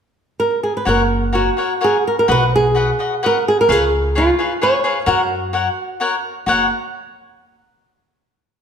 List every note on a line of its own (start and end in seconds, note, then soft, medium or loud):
0.40 0.63 A#4 medium
0.63 0.76 G#4 medium
0.77 0.87 B4 medium
0.85 1.49 F#1 medium
0.85 1.01 F#4 medium
0.85 1.01 A#4 medium
0.85 1.37 A#4 medium
0.85 1.01 C#5 medium
0.85 1.02 F#5 medium
1.33 1.48 F#4 soft
1.33 1.79 F#4 medium
1.33 1.48 A#4 medium
1.33 1.49 C#5 soft
1.33 1.49 F#5 soft
1.57 1.72 F#4 soft
1.57 1.72 A#4 soft
1.57 1.73 C#5 soft
1.57 1.73 F#5 soft
1.81 1.96 F#4 soft
1.81 2.07 G#4 medium
1.81 1.96 A#4 medium
1.81 1.96 C#5 medium
1.81 1.96 F#5 medium
2.07 2.18 A#4 medium
2.19 2.29 A#4 medium
2.28 2.90 B1 medium
2.28 2.43 F#4 medium
2.28 2.43 B4 medium
2.28 2.55 B4 medium
2.28 2.43 D#5 medium
2.28 2.43 F#5 medium
2.56 3.26 G#4 medium
2.75 2.90 F#4 medium
2.75 2.90 B4 soft
2.75 2.90 D#5 medium
2.75 2.90 F#5 medium
2.99 3.13 F#4 soft
2.99 3.14 B4 soft
2.99 3.14 D#5 soft
2.99 3.14 F#5 soft
3.23 3.37 F#4 medium
3.23 3.48 A#4 medium
3.23 3.37 B4 medium
3.23 3.37 D#5 medium
3.23 3.37 F#5 medium
3.48 3.59 G#4 medium
3.61 3.72 A#4 medium
3.69 4.28 C#2 medium
3.69 3.83 G#4 medium
3.69 4.18 G#4 medium
3.69 3.83 B4 medium
3.69 3.83 C#5 medium
3.69 3.83 F5 medium
4.15 4.59 F4 medium
4.15 4.29 G#4 medium
4.15 4.30 B4 medium
4.15 4.29 C#5 medium
4.15 4.30 F5 medium
4.39 4.52 G#4 soft
4.39 4.52 B4 soft
4.39 4.52 C#5 soft
4.39 4.53 F5 soft
4.61 4.75 G#4 soft
4.61 4.75 B4 medium
4.61 4.75 C#5 medium
4.61 5.09 C#5 medium
4.61 4.76 F5 medium
4.84 4.97 G#4 medium
4.84 4.98 B4 medium
4.84 4.98 C#5 soft
4.84 4.98 F5 medium
5.06 5.67 F#2 medium
5.06 5.20 F#4 medium
5.06 5.97 F#4 medium
5.06 5.20 A#4 medium
5.06 5.21 C#5 medium
5.06 5.21 F#5 medium
5.53 5.67 F#4 medium
5.53 5.67 A#4 medium
5.53 5.67 C#5 medium
5.53 5.68 F#5 medium
6.00 6.14 F#4 medium
6.00 6.15 A#4 medium
6.00 6.15 C#5 medium
6.00 6.15 F#5 medium
6.46 6.69 F#1 medium
6.46 6.65 F#4 medium
6.46 6.66 A#4 medium
6.46 6.66 C#5 medium
6.46 6.67 F#5 medium